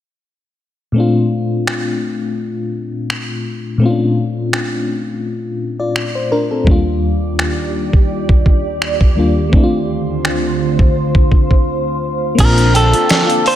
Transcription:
0.92 3.76 A#2 medium
0.92 3.77 A3 medium
0.92 3.77 C4 medium
0.98 3.78 D4 medium
0.98 3.79 F4 medium
1.67 finger snap loud
3.10 finger snap medium
3.78 6.61 A#2 medium
3.78 6.62 A3 medium
3.78 5.56 C4 medium
3.84 3.89 C#4 soft
3.84 5.58 F4 medium
3.90 5.61 D4 medium
4.53 finger snap loud
5.80 6.14 F4 medium
5.80 6.13 D5 medium
5.96 finger snap loud
6.15 6.31 C5 medium
6.32 6.50 D4 medium
6.32 6.50 A#4 medium
6.51 6.85 C4 medium
6.51 6.85 A4 medium
6.64 9.11 D#2 medium
6.64 9.50 D#2 medium
6.64 9.50 D#3 medium
6.64 9.12 G3 medium
6.64 9.13 A#3 medium
6.64 9.50 G4 medium
6.64 9.50 D5 medium
6.64 kick loud
6.69 9.14 D4 medium
6.69 9.15 F4 medium
7.39 finger snap loud
7.93 kick medium
8.29 kick medium
8.46 kick medium
8.82 finger snap medium
9.01 kick medium
9.15 9.52 D#2 medium
9.15 9.52 G3 soft
9.15 9.53 A#3 medium
9.15 9.53 D4 medium
9.15 9.54 F4 medium
9.49 12.36 D2 medium
9.49 12.36 D3 medium
9.49 12.33 A3 medium
9.49 12.34 C4 medium
9.49 12.36 F4 medium
9.49 12.36 C5 medium
9.49 kick loud
9.54 12.35 D4 medium
9.54 9.62 E4 medium
9.63 12.40 F4 medium
10.25 finger snap loud
10.79 kick medium
11.15 kick medium
11.32 kick medium
11.51 kick medium
12.35 12.94 A#1 loud
12.35 13.56 A#3 medium
12.35 13.56 C4 medium
12.35 13.56 D5 medium
12.35 13.56 F5 medium
12.35 13.56 A5 medium
12.35 kick loud
12.35 closed hi-hat medium
12.35 crash medium
12.40 13.56 D4 medium
12.40 13.56 F4 medium
12.40 12.73 A#4 loud
12.58 closed hi-hat medium
12.74 13.47 A4 loud
12.74 13.56 G5 medium
12.74 closed hi-hat medium
12.93 closed hi-hat soft
13.09 snare loud
13.09 closed hi-hat medium
13.30 closed hi-hat medium
13.46 13.56 C5 loud
13.46 open hi-hat medium

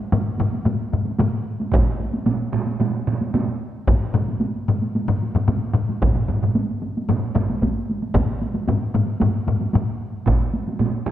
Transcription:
0.12 taiko low-mid medium
0.12 taiko high medium
0.39 taiko low-mid loud
0.39 taiko high soft
0.53 taiko high medium
0.66 taiko low-mid loud
0.66 taiko high medium
0.92 taiko low-mid medium
0.92 taiko high medium
1.06 taiko high medium
1.19 taiko low-mid loud
1.19 taiko high medium
1.60 taiko high medium
1.72 taiko loud
1.72 taiko mid medium
1.72 taiko high medium
2.00 taiko high medium
2.13 taiko high medium
2.26 taiko mid medium
2.26 taiko high medium
2.53 taiko mid loud
2.53 taiko high medium
2.67 taiko high medium
2.80 taiko mid medium
2.80 taiko high medium
3.07 taiko mid medium
3.07 taiko high medium
3.21 taiko high medium
3.34 taiko mid loud
3.34 taiko high medium
3.87 taiko loud
3.87 taiko low-mid loud
3.87 taiko high medium
4.14 taiko low-mid loud
4.14 taiko high medium
4.28 taiko high medium
4.40 taiko high medium
4.68 taiko low-mid medium
4.68 taiko high soft
4.82 taiko high soft
4.95 taiko high medium
5.08 taiko low-mid loud
5.22 taiko high medium
5.35 taiko low-mid medium
5.35 taiko high medium
5.48 taiko low-mid loud
5.48 taiko high medium
5.74 taiko low-mid loud
5.89 taiko high medium
6.02 taiko loud
6.02 taiko low-mid medium
6.02 taiko mid medium
6.02 taiko high medium
6.15 taiko low-mid medium
6.15 taiko mid medium
6.28 taiko low-mid medium
6.28 taiko mid medium
6.28 taiko high medium
6.43 taiko low-mid medium
6.43 taiko mid medium
6.43 taiko high medium
6.55 taiko high medium
6.83 taiko high medium
6.97 taiko high soft
7.09 taiko low-mid medium
7.09 taiko mid medium
7.09 taiko high medium
7.35 taiko medium
7.35 taiko low-mid medium
7.35 taiko mid medium
7.35 taiko high medium
7.50 taiko high medium
7.62 taiko medium
7.62 taiko high medium
7.90 taiko high medium
8.02 taiko high medium
8.14 taiko loud
8.14 taiko low-mid loud
8.14 taiko high medium
8.42 taiko high medium
8.54 taiko high medium
8.68 taiko low-mid medium
8.68 taiko high medium
8.94 taiko low-mid medium
8.94 taiko high medium
9.07 taiko high medium
9.20 taiko low-mid loud
9.20 taiko high medium
9.47 taiko low-mid medium
9.47 taiko high medium
9.60 taiko high medium
9.73 taiko low-mid loud
9.73 taiko high medium
10.26 taiko medium
10.26 taiko mid loud
10.26 taiko high medium
10.54 taiko high medium
10.68 taiko high medium
10.80 taiko mid medium
10.80 taiko high medium
11.06 taiko mid loud
11.06 taiko high medium

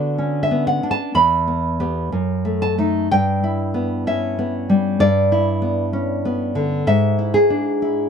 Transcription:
0.00 0.83 D3 medium
0.00 0.50 B3 soft
0.00 1.00 F#4 soft
0.00 0.39 D5 medium
0.18 1.16 C#4 soft
0.43 0.67 E5 medium
0.51 1.16 B3 soft
0.67 0.90 F#5 medium
0.83 1.16 D4 soft
0.91 1.15 A5 medium
1.15 2.09 E2 medium
1.15 2.57 B5 medium
1.48 1.79 B3 soft
1.80 2.09 B3 soft
1.80 2.09 G4 soft
2.12 3.08 F#2 soft
2.45 2.77 A3 soft
2.62 3.09 A5 medium
2.78 3.08 A3 soft
2.78 3.08 D#4 soft
3.11 4.99 G2 medium
3.11 4.04 G5 medium
3.44 4.87 E4 soft
3.74 4.37 B3 soft
4.07 5.02 C#4 soft
4.07 4.53 E5 medium
4.39 5.02 B3 soft
4.70 5.02 G3 soft
5.00 6.82 G2 medium
5.00 6.82 D5 medium
5.32 6.71 E4 soft
5.62 6.24 B3 soft
5.93 6.87 C#4 soft
6.25 6.87 B3 soft
6.55 6.87 D3 soft
6.87 8.09 G#2 medium
6.87 7.32 E5 medium
7.19 7.81 E4 soft
7.34 8.09 G#4 medium
7.50 8.09 D4 soft
7.82 8.09 E4 soft

